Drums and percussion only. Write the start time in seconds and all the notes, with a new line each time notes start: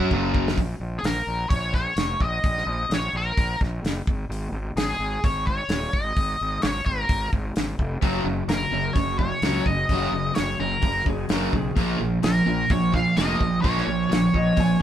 0.11 kick
0.34 kick
0.48 snare
0.58 kick, open hi-hat
1.04 snare, open hi-hat
1.50 kick, open hi-hat
1.74 kick, snare
1.97 snare, open hi-hat
2.20 kick
2.44 kick, open hi-hat
2.58 snare
2.91 snare, open hi-hat
3.37 kick, open hi-hat
3.61 kick, snare
3.85 snare, open hi-hat
4.07 kick
4.32 open hi-hat
4.77 snare, open hi-hat
5.24 kick, open hi-hat
5.47 kick
5.69 snare, open hi-hat
5.93 kick
6.17 kick, open hi-hat
6.62 snare, open hi-hat
6.86 kick
7.09 kick, open hi-hat
7.33 kick
7.56 snare, open hi-hat
7.79 kick
8.02 kick, open hi-hat
8.49 snare, open hi-hat
8.96 kick, open hi-hat
9.19 kick
9.42 snare, open hi-hat
9.66 kick
9.89 kick, open hi-hat
10.35 snare, open hi-hat
10.82 kick, open hi-hat
11.06 kick
11.29 snare, open hi-hat
11.53 kick
11.77 kick, open hi-hat
12.23 snare, open hi-hat
12.70 kick, open hi-hat
12.94 kick, snare
13.17 snare, open hi-hat
13.41 kick
13.64 kick, open hi-hat
13.78 snare
14.12 snare, open hi-hat
14.34 kick
14.57 kick, open hi-hat